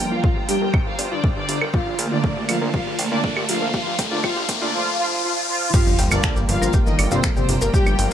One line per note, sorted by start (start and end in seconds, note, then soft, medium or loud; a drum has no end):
0.00 0.18 F3 loud
0.00 0.18 G3 medium
0.00 0.18 A#3 loud
0.00 4.70 F4 medium
0.00 1.72 C5 medium
0.00 1.70 G5 medium
0.00 4.70 A#5 medium
0.00 riser medium
0.11 0.20 G1 medium
0.11 0.35 F3 medium
0.11 0.35 F4 medium
0.11 0.16 F4 loud
0.11 0.35 F5 medium
0.24 0.31 A4 medium
0.24 kick loud
0.36 0.45 G1 medium
0.36 0.44 G4 medium
0.49 0.58 G1 loud
0.49 0.72 G3 medium
0.49 0.72 G4 loud
0.49 0.60 G4 medium
0.49 0.72 G5 medium
0.49 open hi-hat loud
0.61 0.70 G1 medium
0.61 0.72 A#4 loud
0.74 0.78 G4 medium
0.74 kick loud
0.74 claves soft
0.86 0.95 G1 medium
0.86 1.02 F3 medium
0.86 1.02 F4 medium
0.86 0.91 A#4 medium
0.86 1.02 F5 medium
0.99 1.08 G1 loud
0.99 1.06 D5 medium
0.99 open hi-hat loud
1.11 1.20 G2 medium
1.11 1.27 D3 medium
1.11 1.27 D4 medium
1.11 1.16 F4 loud
1.11 1.27 D5 medium
1.24 1.31 A4 medium
1.24 kick loud
1.36 1.45 G1 medium
1.36 1.60 D3 medium
1.36 1.60 D4 medium
1.36 1.44 G4 medium
1.36 1.60 D5 medium
1.49 1.58 G1 medium
1.49 1.60 G4 medium
1.49 open hi-hat loud
1.61 1.70 G1 medium
1.61 1.72 A#4 loud
1.61 claves medium
1.74 1.97 F3 medium
1.74 1.97 F4 medium
1.74 1.78 G4 medium
1.74 4.71 D5 medium
1.74 1.97 F5 medium
1.74 4.71 A5 medium
1.74 kick loud
1.87 1.95 A#1 medium
1.87 1.94 G4 medium
1.99 2.08 A#1 loud
1.99 2.72 D3 medium
1.99 2.72 A3 medium
1.99 2.72 A#3 medium
1.99 2.03 G5 medium
1.99 open hi-hat loud
2.11 2.20 A#1 medium
2.11 2.35 D3 medium
2.11 2.35 D4 medium
2.11 2.16 F4 medium
2.11 2.35 D5 medium
2.24 2.31 A4 medium
2.24 kick loud
2.37 2.45 A#1 medium
2.37 2.44 G4 medium
2.49 2.58 A#1 loud
2.49 2.72 F3 medium
2.49 2.72 F4 medium
2.49 2.60 G4 medium
2.49 2.72 F5 medium
2.49 open hi-hat loud
2.49 claves soft
2.61 2.70 A#1 loud
2.61 2.72 A#4 loud
2.74 2.97 F3 medium
2.74 2.97 F4 loud
2.74 2.78 G4 medium
2.74 2.97 F5 medium
2.74 kick loud
2.87 2.95 A#1 medium
2.87 2.94 G4 medium
2.99 3.08 A#1 loud
2.99 3.72 D3 medium
2.99 3.72 A3 medium
2.99 3.72 A#3 medium
2.99 3.03 G5 medium
2.99 open hi-hat loud
3.11 3.20 A#2 medium
3.11 3.35 D3 medium
3.11 3.35 D4 medium
3.11 3.16 F4 medium
3.11 3.35 D5 medium
3.24 3.31 A4 medium
3.24 kick loud
3.37 3.45 A#1 medium
3.37 3.44 G4 medium
3.37 claves medium
3.49 3.58 A#1 loud
3.49 3.72 F3 medium
3.49 3.72 F4 medium
3.49 3.60 G4 medium
3.49 3.72 F5 medium
3.49 open hi-hat loud
3.62 3.70 A#1 medium
3.62 3.72 A#4 medium
3.74 3.97 F3 medium
3.74 3.97 F4 loud
3.74 3.78 G4 loud
3.74 3.97 F5 medium
3.74 kick loud
3.87 3.95 A#1 medium
3.87 3.94 G4 medium
3.99 4.08 A#1 loud
3.99 4.22 D3 medium
3.99 4.22 A3 medium
3.99 4.22 A#3 loud
3.99 4.03 G5 medium
3.99 kick loud
3.99 open hi-hat loud
4.11 4.20 A#1 medium
4.11 4.22 D3 medium
4.11 4.22 D4 loud
4.11 4.16 F4 loud
4.11 4.22 D5 medium
4.24 4.47 F3 medium
4.24 4.47 F4 loud
4.24 4.28 G4 loud
4.24 4.47 F5 loud
4.24 kick loud
4.24 claves soft
4.37 4.45 A#1 medium
4.37 4.44 G4 medium
4.49 4.58 A#1 loud
4.49 4.72 D3 medium
4.49 4.72 A3 medium
4.49 4.72 A#3 loud
4.49 4.53 G5 medium
4.49 kick loud
4.49 open hi-hat loud
4.62 4.70 A#1 loud
4.62 4.72 D3 medium
4.62 4.72 D4 medium
4.62 4.66 F4 loud
4.62 4.72 D5 medium
4.74 4.97 F3 medium
4.74 4.97 F4 loud
4.99 5.22 F3 medium
4.99 5.22 F4 loud
5.24 5.47 F3 medium
5.24 5.47 F4 loud
5.49 5.72 F3 medium
5.49 5.72 F4 loud
5.74 5.97 F3 medium
5.74 8.13 F4 medium
5.74 5.97 F4 loud
5.74 5.78 G4 loud
5.74 8.13 D5 medium
5.74 5.97 F5 loud
5.74 8.13 G5 medium
5.74 8.13 A#5 medium
5.74 kick loud
5.74 crash loud
5.74 sub drop medium
5.74 maracas medium
5.87 5.95 G1 medium
5.87 5.94 G4 medium
5.87 maracas soft
5.99 6.08 G1 loud
5.99 7.96 F3 medium
5.99 7.96 G3 medium
5.99 7.96 A#3 loud
5.99 6.03 G5 medium
5.99 open hi-hat loud
6.11 6.20 G1 medium
6.11 6.35 D3 medium
6.11 6.35 D4 loud
6.11 6.16 F4 medium
6.11 6.35 D5 medium
6.11 claves medium
6.11 maracas medium
6.23 6.31 A4 medium
6.23 finger snap loud
6.23 kick loud
6.23 maracas medium
6.36 6.45 G1 medium
6.36 6.44 G4 medium
6.36 maracas soft
6.49 6.58 G1 loud
6.49 6.72 F3 medium
6.49 6.72 F4 loud
6.49 6.60 G4 medium
6.49 6.72 F5 medium
6.49 open hi-hat loud
6.61 6.70 G1 medium
6.61 6.72 A#4 loud
6.61 maracas medium
6.73 6.78 G4 medium
6.73 kick loud
6.73 maracas medium
6.86 6.95 G1 medium
6.86 7.02 D#3 medium
6.86 7.02 D#4 medium
6.86 6.91 A#4 medium
6.86 7.02 D#5 medium
6.86 maracas soft
6.99 7.08 G1 loud
6.99 7.06 D5 medium
6.99 open hi-hat loud
6.99 claves medium
7.11 7.20 G2 medium
7.11 7.27 C3 medium
7.11 7.27 C4 loud
7.11 7.16 F4 loud
7.11 7.27 C5 medium
7.11 maracas medium
7.24 7.31 A4 medium
7.24 finger snap loud
7.24 kick loud
7.24 maracas medium
7.36 7.45 G1 medium
7.36 7.60 C3 medium
7.36 7.60 C4 medium
7.36 7.44 G4 medium
7.36 7.60 C5 loud
7.36 maracas soft
7.49 7.58 G1 loud
7.49 7.60 G4 medium
7.49 open hi-hat loud
7.62 7.70 G1 medium
7.62 7.72 A#4 loud
7.62 maracas medium
7.74 7.97 G3 medium
7.74 7.78 G4 loud
7.74 7.97 G4 loud
7.74 7.97 G5 loud
7.74 kick loud
7.74 maracas medium
7.86 7.95 G1 medium
7.86 7.94 G4 medium
7.86 claves medium
7.86 maracas soft
7.99 8.08 G1 loud
7.99 8.13 F3 loud
7.99 8.13 G3 medium
7.99 8.13 A#3 loud
7.99 8.03 G5 medium
7.99 open hi-hat loud